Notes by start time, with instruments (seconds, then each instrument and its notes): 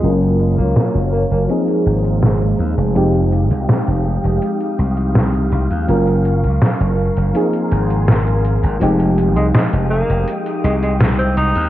Already playing: tenor saxophone G#3
0.02 slap bass F#1, fm electric piano F#3 A#3 C#4 F4 A#4, string machine F#3 C#5 F5 A#5, closed hi-hat
0.22 closed hi-hat
0.40 closed hi-hat
0.58 slap bass C#2, tenor saxophone A#3, closed hi-hat
0.76 snare, closed hi-hat
0.95 slap bass F#1, closed hi-hat
1.13 tenor saxophone A#3
1.31 slap bass F#1, tenor saxophone A#3, closed hi-hat
1.48 fm electric piano F3 A#3 C4 D#4 G#4, string machine G#3 C5 F5, closed hi-hat
1.68 closed hi-hat
1.86 slap bass G#1, closed hi-hat
2.05 closed hi-hat
2.23 snare, closed hi-hat
2.41 closed hi-hat
2.59 slap bass D#2, closed hi-hat
2.78 slap bass F1, closed hi-hat
2.94 slap bass F1, fm electric piano F3 G#3 C4 D#4 G4, string machine G5 D#6, closed hi-hat
3.14 closed hi-hat
3.32 closed hi-hat
3.51 slap bass C2, closed hi-hat
3.69 snare, closed hi-hat
3.87 slap bass F1, closed hi-hat
4.24 slap bass F1, closed hi-hat
4.42 closed hi-hat
4.61 closed hi-hat
4.79 slap bass C2, closed hi-hat
4.97 closed hi-hat
5.15 snare, closed hi-hat
5.34 closed hi-hat
5.52 slap bass C2, closed hi-hat
5.70 slap bass D#2, closed hi-hat
5.87 slap bass F#1, fm electric piano F#3 A#3 C#4 F4 A#4, string machine A#4 C#6, closed hi-hat
6.07 closed hi-hat
6.25 closed hi-hat
6.44 slap bass C#2, closed hi-hat
6.62 snare, closed hi-hat
6.80 slap bass F#1, closed hi-hat
7.17 slap bass F#1, closed hi-hat
7.33 fm electric piano F3 A#3 C4 D#4 G#4, string machine G#5 C6, closed hi-hat
7.53 closed hi-hat
7.71 slap bass G#1, closed hi-hat
7.90 closed hi-hat
8.08 snare, closed hi-hat
8.27 closed hi-hat
8.45 closed hi-hat
8.63 slap bass G#1, closed hi-hat
8.80 slap bass F1, fm electric piano F3 G#3 C4 D#4 G4, string machine G#3 G5 D#6, closed hi-hat
9.00 closed hi-hat
9.18 closed hi-hat
9.36 slap bass C2, tenor saxophone G#3, closed hi-hat
9.54 tenor saxophone G#3, snare, closed hi-hat
9.73 slap bass F1, closed hi-hat
9.90 tenor saxophone A#3
10.10 slap bass F1, closed hi-hat
10.28 closed hi-hat
10.46 closed hi-hat
10.64 slap bass C2, tenor saxophone G#3, closed hi-hat
10.83 tenor saxophone G#3, closed hi-hat
11.01 snare, closed hi-hat
11.19 tenor saxophone C4, closed hi-hat
11.37 slap bass C2, tenor saxophone D#4, closed hi-hat
11.56 slap bass D#2, closed hi-hat